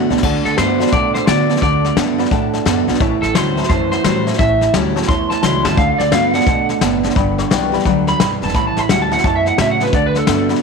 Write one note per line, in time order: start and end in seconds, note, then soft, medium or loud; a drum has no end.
0.00 0.21 A2 loud
0.00 0.10 A3 loud
0.00 0.11 D4 loud
0.10 0.20 B1 loud
0.10 0.22 D3 medium
0.10 0.22 B3 medium
0.10 0.24 D4 soft
0.10 0.23 F#4 medium
0.10 0.18 D5 medium
0.10 0.19 F#5 medium
0.10 0.18 A5 loud
0.10 snare soft
0.17 snare soft
0.23 0.39 D2 medium
0.23 0.55 D3 medium
0.23 0.57 D3 loud
0.23 0.56 A3 medium
0.23 0.36 D5 loud
0.23 0.37 F#5 loud
0.23 0.37 A5 loud
0.23 kick loud
0.23 snare soft
0.23 crash loud
0.45 0.55 D2 medium
0.45 0.58 A4 loud
0.45 0.53 D5 medium
0.45 0.53 F#5 medium
0.45 0.53 A5 medium
0.45 snare soft
0.58 0.84 G2 medium
0.58 0.79 D3 medium
0.58 0.78 D3 medium
0.58 0.80 A3 medium
0.58 0.78 B3 medium
0.58 0.80 D4 loud
0.58 0.79 F#4 loud
0.58 0.92 C5 loud
0.58 0.71 D5 medium
0.58 0.72 F#5 medium
0.58 0.72 A5 medium
0.58 snare loud
0.58 hi-hat pedal loud
0.80 0.91 D3 medium
0.80 0.92 B3 loud
0.80 0.93 D4 medium
0.80 0.92 F#4 medium
0.80 0.88 D5 medium
0.80 0.88 F#5 medium
0.80 0.88 A5 medium
0.80 snare soft
0.87 snare soft
0.93 1.60 A2 loud
0.93 1.18 B2 loud
0.93 1.25 D3 medium
0.93 1.25 A3 medium
0.93 1.14 D5 loud
0.93 1.06 D5 loud
0.93 1.06 F#5 medium
0.93 1.06 A5 loud
0.93 kick loud
0.93 snare soft
1.14 1.27 C5 loud
1.14 1.23 D5 medium
1.14 1.23 F#5 medium
1.14 1.23 A5 medium
1.14 snare soft
1.27 1.47 D3 medium
1.27 1.49 D3 loud
1.27 1.53 D3 medium
1.27 1.49 A3 medium
1.27 1.47 B3 medium
1.27 1.49 D4 loud
1.27 1.48 F#4 loud
1.27 1.60 D5 medium
1.27 1.41 D5 medium
1.27 1.41 F#5 medium
1.27 1.41 A5 medium
1.27 snare loud
1.27 hi-hat pedal medium
1.49 1.61 D3 medium
1.49 1.61 B3 medium
1.49 1.63 D4 soft
1.49 1.62 F#4 medium
1.49 1.57 D5 medium
1.49 1.57 F#5 medium
1.49 1.57 A5 medium
1.49 snare soft
1.56 snare soft
1.62 1.88 D2 loud
1.62 1.94 D3 medium
1.62 1.95 D3 loud
1.62 1.95 A3 loud
1.62 1.96 D5 loud
1.62 1.76 D5 medium
1.62 1.76 F#5 medium
1.62 1.76 A5 loud
1.62 kick loud
1.62 snare soft
1.84 1.92 D5 medium
1.84 1.92 F#5 medium
1.84 1.93 A5 medium
1.84 snare soft
1.96 2.22 G2 medium
1.96 2.17 D3 medium
1.96 2.18 D3 loud
1.96 2.18 A3 loud
1.96 2.17 B3 medium
1.96 2.19 D4 loud
1.96 2.17 F#4 loud
1.96 2.10 D5 medium
1.96 2.10 F#5 medium
1.96 2.10 A5 medium
1.96 snare loud
1.96 hi-hat pedal medium
2.18 2.30 D3 medium
2.18 2.30 B3 medium
2.18 2.32 D4 soft
2.18 2.31 F#4 medium
2.18 2.27 D5 loud
2.18 2.27 F#5 medium
2.18 2.27 B5 loud
2.18 snare soft
2.25 snare soft
2.31 2.57 A2 medium
2.31 2.99 A2 loud
2.31 2.63 D3 medium
2.31 2.64 A3 loud
2.31 2.45 D5 loud
2.31 2.45 F#5 loud
2.31 2.45 A5 loud
2.31 kick loud
2.31 snare soft
2.54 2.61 D5 medium
2.54 2.61 F#5 medium
2.54 2.61 A5 loud
2.54 snare soft
2.65 2.82 F#2 loud
2.65 2.87 D3 medium
2.65 2.86 D3 medium
2.65 2.88 A3 loud
2.65 2.86 B3 medium
2.65 2.88 D4 loud
2.65 2.87 F#4 loud
2.65 2.80 D5 loud
2.65 2.80 F#5 medium
2.65 2.80 A5 loud
2.65 snare loud
2.65 hi-hat pedal medium
2.88 2.97 B1 medium
2.88 3.00 D3 medium
2.88 3.00 B3 medium
2.88 3.01 D4 soft
2.88 3.00 F#4 medium
2.88 2.96 D5 medium
2.88 2.96 F#5 medium
2.88 2.96 A5 medium
2.88 snare soft
2.94 snare soft
3.00 3.17 A1 loud
3.00 3.33 A2 loud
3.00 3.68 A2 loud
3.00 3.33 E3 loud
3.00 3.14 C#5 loud
3.00 3.14 E5 loud
3.00 3.14 A5 loud
3.00 kick loud
3.00 snare soft
3.22 3.32 A1 medium
3.22 3.35 A4 loud
3.22 3.30 C#5 medium
3.22 3.30 E5 medium
3.22 3.30 A5 medium
3.22 snare soft
3.35 3.61 D2 medium
3.35 3.55 A2 medium
3.35 3.56 E3 loud
3.35 3.55 F#3 medium
3.35 3.57 G3 loud
3.35 3.57 C#4 loud
3.35 3.56 E4 medium
3.35 3.68 C5 loud
3.35 3.49 C#5 medium
3.35 3.49 E5 medium
3.35 3.49 G5 medium
3.35 snare loud
3.35 hi-hat pedal loud
3.57 3.69 A2 medium
3.57 3.69 F#3 medium
3.57 3.71 C#4 medium
3.57 3.70 E4 medium
3.57 3.65 C#5 medium
3.57 3.65 E5 medium
3.57 3.65 A5 loud
3.57 snare soft
3.63 snare soft
3.69 4.37 E2 loud
3.69 3.95 F#2 loud
3.69 4.03 A2 medium
3.69 4.03 E3 medium
3.69 3.91 C5 loud
3.69 3.83 C#5 loud
3.69 3.83 E5 medium
3.69 3.83 A5 loud
3.69 kick loud
3.69 snare soft
3.91 4.03 C5 loud
3.91 4.00 C#5 medium
3.91 4.00 E5 medium
3.91 4.00 F#5 medium
3.91 snare soft
4.04 4.30 A2 loud
4.04 4.25 A2 medium
4.04 4.26 E3 loud
4.04 4.25 F#3 medium
4.04 4.26 G3 loud
4.04 4.27 C#4 loud
4.04 4.26 E4 loud
4.04 4.38 C5 medium
4.04 4.18 C#5 medium
4.04 4.18 E5 medium
4.04 4.18 B5 loud
4.04 snare loud
4.04 hi-hat pedal medium
4.26 4.38 A2 medium
4.26 4.38 F#3 medium
4.26 4.40 C#4 medium
4.26 4.39 E4 medium
4.26 4.34 C#5 medium
4.26 4.34 E5 medium
4.26 4.34 A5 medium
4.26 snare soft
4.33 snare soft
4.38 4.65 A1 loud
4.38 4.71 A2 medium
4.38 5.07 A2 loud
4.38 4.72 E3 loud
4.38 4.52 C#5 medium
4.38 4.73 E5 loud
4.38 4.52 E5 medium
4.38 4.52 A5 loud
4.38 kick loud
4.38 snare soft
4.61 4.69 C#5 medium
4.61 4.69 E5 medium
4.61 4.69 A5 medium
4.61 snare soft
4.74 4.99 D2 medium
4.74 4.94 A2 medium
4.74 4.95 E3 medium
4.74 4.94 F#3 loud
4.74 4.96 G3 loud
4.74 4.96 C#4 loud
4.74 4.95 E4 loud
4.74 4.87 C#5 medium
4.74 4.87 E5 medium
4.74 4.87 A5 medium
4.74 snare loud
4.74 hi-hat pedal medium
4.96 5.07 A2 medium
4.96 5.08 F#3 medium
4.96 5.09 C#4 medium
4.96 5.08 E4 medium
4.96 5.04 C#5 loud
4.96 5.04 E5 medium
4.96 5.04 A5 loud
4.96 snare soft
5.02 snare soft
5.08 5.34 E2 medium
5.08 5.76 E2 loud
5.08 5.41 A2 medium
5.08 5.41 E3 medium
5.08 5.22 C#5 loud
5.08 5.22 E5 medium
5.08 5.22 A5 loud
5.08 5.30 C6 loud
5.08 kick loud
5.08 snare soft
5.30 5.39 C#5 medium
5.30 5.39 E5 medium
5.30 5.43 A5 loud
5.30 5.39 A5 medium
5.30 snare soft
5.43 5.59 C#2 loud
5.43 5.63 A2 medium
5.43 5.76 E3 medium
5.43 5.63 F#3 medium
5.43 5.77 G3 loud
5.43 5.77 C#4 medium
5.43 5.77 E4 loud
5.43 5.57 C#5 medium
5.43 5.57 E5 medium
5.43 5.57 A5 medium
5.43 5.64 C6 loud
5.43 snare medium
5.43 hi-hat pedal medium
5.65 5.74 G1 loud
5.65 5.77 A2 medium
5.65 5.77 F#3 medium
5.65 5.73 C#5 medium
5.65 5.73 E5 medium
5.65 5.77 A5 medium
5.65 5.73 A5 medium
5.65 snare loud
5.77 5.94 D2 loud
5.77 6.10 D3 medium
5.77 6.11 D3 medium
5.77 6.10 A3 loud
5.77 5.91 D5 medium
5.77 5.99 F5 medium
5.77 5.91 F#5 medium
5.77 5.91 A5 loud
5.77 kick loud
5.77 snare soft
5.98 6.09 D2 medium
5.98 6.12 D5 loud
5.98 6.07 D5 medium
5.98 6.07 F#5 medium
5.98 6.07 A5 medium
5.98 snare soft
6.12 6.38 G2 loud
6.12 6.33 D3 loud
6.12 6.32 D3 medium
6.12 6.34 A3 medium
6.12 6.32 B3 loud
6.12 6.34 D4 loud
6.12 6.32 F#4 loud
6.12 6.26 D5 medium
6.12 6.34 F5 loud
6.12 6.26 F#5 medium
6.12 6.26 B5 medium
6.12 snare loud
6.12 hi-hat pedal medium
6.33 6.46 D3 medium
6.33 6.46 B3 medium
6.33 6.47 D4 medium
6.33 6.46 F#4 medium
6.33 6.42 D5 medium
6.33 7.35 F#5 loud
6.33 6.42 F#5 medium
6.33 6.43 A5 medium
6.33 snare soft
6.41 snare soft
6.47 6.72 B2 loud
6.47 6.81 B2 loud
6.47 6.79 D3 medium
6.47 6.80 A3 medium
6.47 6.60 D5 loud
6.47 6.61 F#5 medium
6.47 6.61 A5 loud
6.47 kick loud
6.47 snare soft
6.69 6.77 D5 medium
6.69 6.77 F#5 medium
6.69 6.77 A5 medium
6.69 snare soft
6.81 7.07 F#1 loud
6.81 7.15 A2 loud
6.81 7.02 D3 medium
6.81 7.02 B3 loud
6.81 6.95 D5 medium
6.81 6.95 F#5 medium
6.81 6.95 A5 loud
6.81 snare loud
6.81 hi-hat pedal medium
7.03 7.15 D3 medium
7.03 7.16 B3 medium
7.03 7.11 D5 medium
7.03 7.12 F#5 medium
7.03 7.12 A5 medium
7.03 snare soft
7.10 snare soft
7.16 7.42 G1 loud
7.16 7.83 G2 loud
7.16 7.49 G2 medium
7.16 7.49 D3 loud
7.16 7.30 D5 loud
7.16 7.30 G5 loud
7.16 7.30 B5 loud
7.16 kick loud
7.16 snare soft
7.38 7.46 D5 medium
7.38 7.46 G5 medium
7.38 7.46 C#6 loud
7.38 snare soft
7.51 7.77 B1 medium
7.51 7.71 G2 medium
7.51 7.72 D3 loud
7.51 7.71 E3 medium
7.51 7.72 G3 loud
7.51 7.73 B3 loud
7.51 7.71 G4 loud
7.51 7.64 D5 medium
7.51 7.64 G5 medium
7.51 7.64 C#6 loud
7.51 snare loud
7.51 hi-hat pedal loud
7.72 7.84 G2 medium
7.72 7.85 E3 medium
7.72 7.86 B3 medium
7.72 7.85 G4 medium
7.72 7.81 D5 loud
7.72 7.81 G5 medium
7.72 7.81 B5 loud
7.72 snare soft
7.79 snare soft
7.85 8.11 D2 loud
7.85 8.18 G2 medium
7.85 8.18 D3 medium
7.85 8.19 F#3 loud
7.85 7.99 D5 loud
7.85 7.99 G5 loud
7.85 7.99 B5 loud
7.85 kick loud
7.85 snare soft
8.07 8.16 G5 medium
8.07 8.31 B5 loud
8.07 snare soft
8.20 8.36 B1 loud
8.20 8.54 G2 loud
8.20 8.40 G2 medium
8.20 8.41 E3 loud
8.20 8.33 D5 medium
8.20 8.34 G5 medium
8.20 8.34 B5 medium
8.20 snare loud
8.20 hi-hat pedal medium
8.42 8.52 E1 loud
8.42 8.54 G2 medium
8.42 8.54 E3 medium
8.42 8.50 D5 medium
8.42 8.50 G5 medium
8.42 8.55 A5 loud
8.42 8.50 B5 medium
8.42 snare soft
8.48 snare soft
8.54 8.71 A1 medium
8.54 9.22 A2 loud
8.54 8.87 A2 medium
8.54 8.88 E3 medium
8.54 8.68 C#5 medium
8.54 8.68 E5 medium
8.54 8.68 A5 loud
8.54 8.66 B5 loud
8.54 kick loud
8.54 snare soft
8.67 8.79 A5 medium
8.77 8.87 A1 medium
8.77 8.85 C#5 medium
8.77 8.85 E5 medium
8.77 8.85 A5 medium
8.77 8.90 B5 loud
8.77 snare soft
8.89 9.15 D2 medium
8.89 9.09 A2 medium
8.89 9.10 E3 loud
8.89 9.10 F#3 loud
8.89 9.11 G3 loud
8.89 9.11 C#4 medium
8.89 9.10 E4 loud
8.89 9.03 C#5 medium
8.89 9.03 E5 medium
8.89 9.02 F#5 medium
8.89 9.03 A5 medium
8.89 snare loud
8.89 hi-hat pedal loud
9.02 9.13 A5 loud
9.11 9.23 A2 medium
9.11 9.23 F#3 medium
9.11 9.25 C#4 soft
9.11 9.24 E4 medium
9.11 9.19 C#5 medium
9.11 9.19 E5 medium
9.11 9.24 F#5 loud
9.11 9.19 A5 medium
9.11 snare soft
9.18 snare soft
9.24 9.50 F#2 loud
9.24 9.56 A2 medium
9.24 9.57 B2 loud
9.24 9.56 E3 loud
9.24 9.38 C#5 loud
9.24 9.38 E5 loud
9.24 9.35 A5 medium
9.24 9.38 A5 loud
9.24 kick loud
9.24 snare soft
9.36 9.47 E5 medium
9.46 9.54 C#5 medium
9.46 9.54 E5 medium
9.46 9.59 F#5 loud
9.46 9.54 A5 medium
9.46 snare soft
9.58 9.78 A2 medium
9.58 9.84 A2 medium
9.58 9.92 C#3 loud
9.58 9.79 F#3 medium
9.58 9.72 C#5 medium
9.58 9.72 E5 medium
9.58 9.70 E5 loud
9.58 9.72 A5 medium
9.58 snare loud
9.58 hi-hat pedal medium
9.71 9.82 F#5 loud
9.80 9.92 A2 medium
9.80 9.92 F#3 medium
9.80 9.93 B4 medium
9.80 9.88 C#5 medium
9.80 9.88 E5 medium
9.80 9.88 A5 medium
9.80 snare soft
9.86 snare soft
9.93 10.19 D2 loud
9.93 10.26 D3 medium
9.93 10.25 D3 medium
9.93 10.26 A3 loud
9.93 10.07 D5 loud
9.93 10.05 D5 medium
9.93 10.07 F#5 medium
9.93 10.07 A5 loud
9.93 kick loud
9.93 snare soft
10.06 10.17 B4 loud
10.15 10.50 A4 loud
10.15 10.23 D5 medium
10.15 10.23 F#5 medium
10.15 10.23 A5 medium
10.15 snare soft
10.27 10.53 G2 medium
10.27 10.47 D3 loud
10.27 10.61 D3 medium
10.27 10.61 A3 loud
10.27 10.48 B3 loud
10.27 10.62 D4 loud
10.27 10.62 F#4 loud
10.27 10.41 D5 medium
10.27 10.41 F#5 medium
10.27 10.41 A5 medium
10.27 snare loud
10.27 hi-hat pedal loud
10.49 10.60 D3 medium
10.49 10.61 B3 medium
10.49 10.57 D5 medium
10.49 10.57 F#5 medium
10.49 10.58 B5 medium
10.49 snare soft
10.55 snare soft